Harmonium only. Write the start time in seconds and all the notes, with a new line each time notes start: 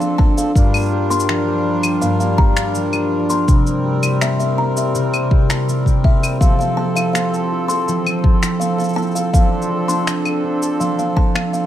Already playing: F3 C4 D4 A4
0.55 G3 D4 F4 A#4
3.49 G3 C4
6.40 F3 A4
9.34 F3 C4 D4